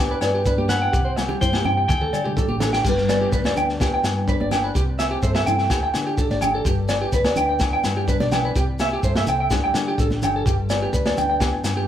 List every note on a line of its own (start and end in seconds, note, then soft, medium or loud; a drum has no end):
0.00 0.14 D2 loud
0.00 0.94 G2 medium
0.00 1.17 G3 medium
0.00 0.70 B3 medium
0.00 0.47 D4 medium
0.00 0.24 G4 medium
0.00 0.18 D5 medium
0.11 0.18 B4 medium
0.21 0.52 G2 medium
0.21 0.92 B4 medium
0.21 0.30 D5 medium
0.21 snare medium
0.21 low agogo medium
0.21 shekere medium
0.35 0.42 G4 medium
0.45 0.95 D4 medium
0.45 0.54 B4 medium
0.45 kick loud
0.45 shekere medium
0.57 0.87 G2 loud
0.57 0.65 G4 medium
0.57 high conga medium
0.69 0.92 B3 medium
0.69 0.77 B4 medium
0.69 1.37 F#5 loud
0.69 snare medium
0.69 low conga medium
0.69 low agogo medium
0.69 shekere medium
0.82 0.89 G5 medium
0.92 1.34 C2 loud
0.92 1.88 C3 medium
0.92 1.00 G4 medium
0.92 kick loud
0.92 shekere loud
1.05 1.12 C5 medium
1.16 1.86 G3 medium
1.16 muted clean electric guitar stroke medium
1.16 snare medium
1.16 high conga medium
1.16 low agogo medium
1.16 shekere medium
1.29 1.36 G4 medium
1.29 low conga medium
1.41 1.61 G2 medium
1.41 1.86 E4 medium
1.41 1.49 C5 medium
1.41 1.86 G5 medium
1.41 kick medium
1.41 shekere loud
1.53 1.60 G4 medium
1.53 snare medium
1.53 high conga medium
1.53 low agogo medium
1.65 1.85 G2 loud
1.65 1.86 C4 medium
1.65 1.73 G5 loud
1.65 low conga medium
1.77 1.85 G5 medium
1.88 2.09 D2 loud
1.88 2.82 D3 medium
1.88 2.56 G5 medium
1.88 muted clean electric guitar stroke medium
1.88 kick loud
1.88 high tom medium
1.88 high conga medium
1.88 low agogo medium
1.88 shekere loud
2.01 2.09 A4 medium
2.01 high tom soft
2.13 2.43 D3 medium
2.13 2.82 G3 medium
2.13 2.21 D5 medium
2.13 low agogo medium
2.13 shekere medium
2.24 2.32 G4 medium
2.24 mid tom medium
2.37 2.89 G4 medium
2.37 2.44 A4 medium
2.37 kick loud
2.37 mid tom medium
2.37 shekere medium
2.49 2.79 A1 loud
2.49 2.56 G4 medium
2.49 high conga medium
2.60 2.83 D4 medium
2.60 2.68 A4 medium
2.60 snare medium
2.60 low conga medium
2.60 low agogo medium
2.60 shekere medium
2.73 2.80 G5 medium
2.73 snare medium
2.84 3.25 G1 medium
2.84 4.76 G2 medium
2.84 4.03 G3 medium
2.84 3.08 B3 medium
2.84 2.92 G4 medium
2.84 muted nylon-string guitar stroke medium
2.84 kick loud
2.84 crash medium
2.84 shekere loud
2.89 3.32 B4 medium
2.98 snare soft
3.09 3.79 B3 medium
3.09 3.17 D5 medium
3.09 snare medium
3.09 low agogo medium
3.09 shekere medium
3.21 3.28 G4 medium
3.32 3.52 D2 medium
3.32 3.40 B4 medium
3.32 4.73 B4 medium
3.32 kick medium
3.32 shekere loud
3.44 3.53 D5 medium
3.44 snare medium
3.44 high conga medium
3.44 low agogo medium
3.55 3.96 D2 loud
3.55 4.26 D4 medium
3.55 3.64 G5 medium
3.55 low conga medium
3.55 shekere medium
3.69 snare soft
3.80 4.52 B3 medium
3.80 3.89 G4 medium
3.80 kick medium
3.80 snare medium
3.80 low agogo medium
3.80 shekere loud
3.94 4.00 G5 medium
4.03 4.34 G2 medium
4.03 5.28 G3 medium
4.03 snare medium
4.03 low agogo medium
4.03 shekere medium
4.27 4.75 D4 medium
4.27 4.36 B4 medium
4.27 kick medium
4.27 shekere medium
4.40 4.70 G1 loud
4.40 4.48 D5 medium
4.40 high conga medium
4.51 4.73 B3 medium
4.51 4.59 G5 medium
4.51 snare medium
4.51 low conga medium
4.51 low agogo medium
4.51 shekere medium
4.64 4.71 B4 medium
4.75 5.15 C2 loud
4.75 5.70 C3 medium
4.75 4.83 G4 loud
4.75 kick loud
4.75 shekere loud
4.99 5.68 C4 medium
4.99 5.06 E5 medium
4.99 snare medium
4.99 low agogo medium
4.99 shekere medium
5.11 5.18 G4 loud
5.22 5.43 G2 medium
5.22 5.68 A4 medium
5.22 5.30 C5 medium
5.22 kick medium
5.22 shekere loud
5.35 5.42 E5 medium
5.35 snare medium
5.35 high conga medium
5.35 low agogo medium
5.46 5.67 G2 loud
5.46 5.68 E4 medium
5.46 5.54 G5 medium
5.46 low conga medium
5.46 shekere medium
5.58 5.66 G5 medium
5.58 snare soft
5.70 5.90 D2 loud
5.70 6.63 D3 medium
5.70 5.78 G4 medium
5.70 kick medium
5.70 snare medium
5.70 low agogo medium
5.70 shekere loud
5.83 5.90 G5 medium
5.94 6.25 D3 medium
5.94 6.63 D4 medium
5.94 snare medium
5.94 low agogo medium
5.94 shekere medium
6.07 6.14 G4 medium
6.18 6.43 G4 medium
6.18 6.26 A4 medium
6.18 kick loud
6.18 shekere medium
6.30 6.60 G#1 loud
6.30 6.38 D5 medium
6.30 snare soft
6.30 high conga medium
6.41 7.14 G4 medium
6.41 6.50 G5 medium
6.41 low conga medium
6.41 low agogo medium
6.41 shekere medium
6.55 6.62 A4 medium
6.65 7.05 G1 medium
6.65 8.56 G2 medium
6.65 6.73 G4 medium
6.65 kick loud
6.65 shekere loud
6.89 7.59 B3 medium
6.89 6.96 D5 medium
6.89 snare medium
6.89 low agogo medium
6.89 shekere medium
7.02 7.09 G4 medium
7.12 7.33 D2 loud
7.12 7.21 B4 medium
7.12 8.53 B4 medium
7.12 kick medium
7.12 shekere loud
7.24 7.33 D5 medium
7.24 snare medium
7.24 high conga medium
7.24 low agogo medium
7.36 7.77 D2 loud
7.36 8.07 D4 medium
7.36 7.45 G5 medium
7.36 low conga medium
7.36 shekere medium
7.49 7.56 G5 medium
7.60 8.32 B3 medium
7.60 muted clean electric guitar stroke medium
7.60 kick loud
7.60 snare medium
7.60 low agogo medium
7.60 shekere loud
7.73 7.80 G5 loud
7.83 8.15 G2 medium
7.83 9.07 G3 medium
7.83 snare medium
7.83 low agogo medium
7.83 shekere medium
7.97 8.04 G4 medium
8.08 8.56 D4 medium
8.08 8.16 B4 medium
8.08 kick loud
8.08 shekere medium
8.20 8.50 B1 loud
8.20 8.27 D5 medium
8.20 snare soft
8.20 high conga medium
8.32 8.54 B3 medium
8.32 8.39 G5 medium
8.32 snare medium
8.32 low conga medium
8.32 low agogo medium
8.32 shekere medium
8.45 8.52 B4 medium
8.56 8.96 C2 loud
8.56 9.50 C3 medium
8.56 8.64 G4 loud
8.56 kick loud
8.56 shekere loud
8.79 9.48 C4 medium
8.79 8.88 E5 medium
8.79 snare medium
8.79 high conga medium
8.79 low agogo medium
8.79 shekere medium
8.93 9.00 G4 medium
9.03 9.23 G2 loud
9.03 9.48 A4 medium
9.03 9.11 C5 medium
9.03 kick medium
9.03 shekere medium
9.15 9.24 E5 medium
9.15 snare medium
9.15 high conga medium
9.15 low agogo medium
9.27 9.47 C2 loud
9.27 9.36 G5 loud
9.27 low conga medium
9.27 shekere medium
9.40 9.47 G5 medium
9.50 9.71 D2 loud
9.50 10.43 D3 medium
9.50 11.64 G3 medium
9.50 9.74 D4 medium
9.50 10.00 G4 medium
9.50 muted clean electric guitar stroke medium
9.50 kick loud
9.50 snare medium
9.50 high conga medium
9.50 low agogo medium
9.50 shekere loud
9.64 9.71 G5 medium
9.74 9.94 D3 medium
9.74 10.44 D4 medium
9.74 snare medium
9.74 low agogo medium
9.74 shekere medium
9.88 9.95 G4 medium
9.98 10.19 A1 medium
9.98 10.22 G4 medium
9.98 10.07 A4 medium
9.98 kick loud
9.98 shekere medium
10.11 snare soft
10.11 high conga medium
10.22 10.43 G1 medium
10.22 10.93 G4 medium
10.22 10.31 G5 medium
10.22 low conga medium
10.22 low agogo medium
10.22 shekere medium
10.36 10.42 A4 medium
10.45 10.86 G1 loud
10.45 11.88 G2 medium
10.45 10.54 G4 medium
10.45 kick loud
10.45 shekere loud
10.70 11.40 B3 medium
10.70 10.77 D5 medium
10.70 snare medium
10.70 low agogo medium
10.70 shekere medium
10.82 10.89 G4 medium
10.93 11.13 D2 medium
10.93 11.88 B4 medium
10.93 11.01 B4 medium
10.93 kick medium
10.93 shekere loud
11.06 11.13 D5 medium
11.06 snare medium
11.06 high conga medium
11.06 low agogo medium
11.17 11.57 D2 loud
11.17 11.87 D4 medium
11.17 11.25 G5 loud
11.17 low conga medium
11.17 shekere medium
11.30 11.37 G5 medium
11.40 11.88 B3 medium
11.40 11.49 G4 medium
11.40 kick loud
11.40 snare medium
11.40 low agogo medium
11.40 shekere loud
11.63 11.88 G2 medium
11.63 11.88 G3 medium
11.63 snare medium
11.63 low agogo medium
11.63 shekere medium
11.77 11.84 G4 medium